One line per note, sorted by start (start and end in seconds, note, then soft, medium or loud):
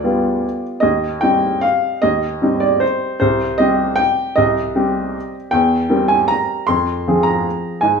0.00 0.46 D2 soft
0.00 0.63 D5 medium
0.04 0.79 G3 soft
0.04 0.79 B3 soft
0.04 0.79 F4 soft
0.80 1.21 D#2 soft
0.80 1.21 D#5 medium
1.21 1.98 G3 soft
1.21 1.99 C4 soft
1.21 1.99 D#4 soft
1.21 1.62 G5 medium
1.61 2.02 F5 medium
2.02 2.41 D#2 soft
2.02 2.61 D#5 medium
2.42 3.17 G3 soft
2.42 3.17 C4 soft
2.42 3.17 D#4 soft
2.60 2.81 D5 medium
2.80 3.18 C5 medium
3.20 3.58 C2 soft
3.20 3.58 C5 medium
3.58 4.34 G3 soft
3.58 4.34 C4 soft
3.58 4.34 G4 soft
3.58 3.98 D#5 medium
3.96 4.36 G5 medium
4.36 4.75 C2 soft
4.36 5.34 D#5 medium
4.75 5.49 G3 soft
4.75 5.49 C4 soft
4.75 5.50 G4 soft
5.51 5.89 E2 medium
5.51 6.09 G5 medium
5.90 6.64 G3 soft
5.90 6.64 C4 soft
5.90 6.64 A#4 soft
6.08 6.29 G#5 medium
6.28 6.68 A#5 medium
6.67 7.05 F2 soft
6.67 7.25 C6 medium
7.08 7.79 F3 soft
7.08 7.79 C4 soft
7.08 7.80 G#4 soft
7.23 7.81 A#5 medium
7.81 8.00 G#2 soft
7.81 8.00 G#5 medium